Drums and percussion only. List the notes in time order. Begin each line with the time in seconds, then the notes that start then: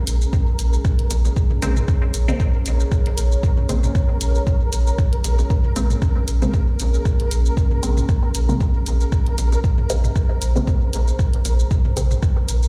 0.07 closed hi-hat, shaker
0.21 shaker
0.33 kick, shaker
0.59 closed hi-hat, shaker
0.73 shaker
0.85 kick, shaker
0.99 closed hi-hat
1.11 closed hi-hat, low bongo, shaker
1.25 low bongo, shaker
1.36 kick, shaker
1.51 mid tom
1.62 closed hi-hat, shaker
1.76 mid tom, shaker
1.88 kick, shaker
2.14 closed hi-hat, shaker
2.28 shaker
2.40 kick, shaker
2.66 closed hi-hat, shaker
2.80 shaker
2.92 kick, shaker
3.06 closed hi-hat
3.18 closed hi-hat, shaker
3.32 shaker
3.43 kick, shaker
3.58 mid tom
3.69 closed hi-hat, shaker
3.83 mid tom, shaker
3.95 kick, shaker
4.21 closed hi-hat, shaker
4.35 shaker
4.47 kick, shaker
4.73 closed hi-hat, shaker
4.87 shaker
4.98 kick, shaker
5.13 closed hi-hat
5.24 closed hi-hat, low bongo, shaker
5.39 low bongo, shaker
5.50 kick, shaker
5.64 mid tom
5.76 closed hi-hat, shaker
5.90 mid tom, shaker
6.02 kick, shaker
6.28 closed hi-hat, shaker
6.42 shaker
6.54 kick, shaker
6.80 closed hi-hat, shaker
6.94 shaker
7.05 kick, shaker
7.20 closed hi-hat
7.31 closed hi-hat, shaker
7.46 shaker
7.57 kick, shaker
7.71 mid tom
7.83 closed hi-hat, shaker
7.97 mid tom, shaker
8.09 kick, shaker
8.35 closed hi-hat, shaker
8.49 shaker
8.61 kick, shaker
8.86 closed hi-hat, shaker
9.01 shaker
9.12 kick, shaker
9.26 closed hi-hat
9.38 closed hi-hat, low bongo, shaker
9.52 low bongo, shaker
9.64 kick, shaker
9.78 mid tom
9.90 closed hi-hat, shaker
10.04 mid tom, shaker
10.16 kick, shaker
10.42 closed hi-hat, shaker
10.56 shaker
10.67 kick, shaker
10.93 closed hi-hat, shaker
11.08 shaker
11.19 kick, shaker
11.33 closed hi-hat
11.45 closed hi-hat, low bongo, shaker
11.59 shaker
11.71 kick, shaker
11.85 mid tom
11.97 closed hi-hat, shaker
12.11 mid tom, shaker
12.23 kick, shaker
12.49 closed hi-hat, shaker
12.63 shaker